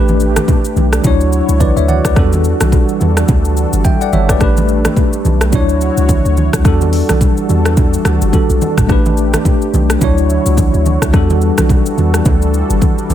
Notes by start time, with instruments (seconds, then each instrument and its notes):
Already playing: 808-style bass A1, tine electric piano A3 D4 G4 B4, analog synth pad A3 D4 G4
0.08 high conga, shaker
0.20 shaker
0.36 cross-stick, high conga, shaker
0.48 kick, low conga, shaker
0.65 shaker
0.76 808-style bass B1, high conga, shaker
0.93 cross-stick, shaker
1.02 808-style bass D2, analog synth pad D3 E4 F#4 C#5, tine electric piano F#3 D4 E4, kick, low conga, shaker
1.07 tine electric piano C#5
1.21 shaker
1.33 shaker
1.49 808-style bass C#2, shaker
1.60 tine electric piano B4 D5, kick, high conga, shaker
1.77 808-style bass D2, tine electric piano C#5 E5, shaker
1.88 tine electric piano D5 F#5, high conga, shaker
2.05 808-style bass D2, tine electric piano B4 D5, kick, cross-stick, shaker
2.14 808-style bass E2, analog synth pad E3 G3 D4 A4, tine electric piano F#3 D4 F#4, kick, cross-stick, low conga, shaker
2.19 tine electric piano G3 A4
2.33 high conga, shaker
2.44 shaker
2.61 808-style bass B1, cross-stick, high conga, shaker
2.72 kick, low conga, shaker
2.89 shaker
3.01 808-style bass E2, high conga, shaker
3.17 cross-stick, shaker
3.28 808-style bass D2, kick, low conga, shaker
3.45 shaker
3.57 shaker
3.73 808-style bass G1, shaker
3.84 tine electric piano E5 G5, kick, high conga, shaker
4.01 tine electric piano D5 F#5, shaker
4.13 808-style bass G1, tine electric piano C#5 E5, high conga, shaker
4.29 tine electric piano B4 D5, kick, cross-stick, shaker
4.38 808-style bass A1, tine electric piano A3 D4 G4, analog synth pad A3, kick, cross-stick, low conga, shaker
4.43 tine electric piano B4
4.57 high conga, shaker
4.68 shaker
4.85 cross-stick, high conga, shaker
4.97 kick, low conga, shaker
5.13 shaker
5.25 808-style bass B1, high conga, shaker
5.41 cross-stick, shaker
5.50 808-style bass D2, analog synth pad D3 E4 F#4 C#5, tine electric piano F#3 D4 E4, kick, low conga, shaker
5.55 tine electric piano C#5
5.69 shaker
5.81 shaker
5.97 808-style bass C#2, shaker
6.08 kick, high conga, shaker
6.25 808-style bass D2, shaker
6.37 high conga, shaker
6.53 808-style bass D2, kick, cross-stick, shaker
6.63 808-style bass E2, analog synth pad E3 G3 D4 F#4 A4, tine electric piano G3 D4 F#4, kick, cross-stick, low conga, shaker
6.68 tine electric piano A4
6.81 high conga, shaker
6.93 open hi-hat, shaker
7.09 808-style bass B1, cross-stick, high conga, shaker
7.21 kick, low conga, shaker
7.37 shaker
7.49 808-style bass E2, high conga, shaker
7.65 cross-stick, shaker
7.77 kick, low conga, shaker
7.93 shaker
8.05 808-style bass D2, cross-stick, high conga, shaker
8.21 808-style bass G1, shaker
8.32 tine electric piano G3 D4 F#4 A4, kick, high conga, shaker
8.50 808-style bass B1, shaker
8.61 high conga, shaker
8.77 808-style bass G1, kick, cross-stick, mid tom, shaker
8.87 808-style bass A1, tine electric piano A3 D4 G4, analog synth pad A3 G4, kick, cross-stick, low conga, shaker
8.92 tine electric piano B4
9.06 high conga, shaker
9.17 shaker
9.34 cross-stick, high conga, shaker
9.45 kick, low conga, shaker
9.62 shaker
9.74 808-style bass B1, high conga, shaker
9.90 cross-stick, shaker
9.99 808-style bass D2, analog synth pad D3 E4 F#4 C#5, tine electric piano F#3 D4 E4, kick, low conga, shaker
10.04 tine electric piano C#5
10.18 shaker
10.30 shaker
10.46 808-style bass C#2, shaker
10.57 kick, high conga, shaker
10.74 808-style bass D2, shaker
10.86 high conga, shaker
11.02 808-style bass D2, kick, cross-stick, shaker
11.11 808-style bass E2, analog synth pad E3 G3 D4 A4, tine electric piano G3 D4 F#4, kick, cross-stick, low conga, shaker
11.16 tine electric piano A4
11.30 high conga, shaker
11.41 shaker
11.58 808-style bass B1, cross-stick, high conga, shaker
11.69 kick, low conga, shaker
11.86 shaker
11.98 808-style bass E2, high conga, shaker
12.14 cross-stick, shaker
12.25 808-style bass D2, kick, low conga, shaker
12.42 shaker
12.54 shaker
12.70 808-style bass G1, shaker
12.81 kick, high conga, shaker
12.98 shaker
13.10 808-style bass G1, high conga, shaker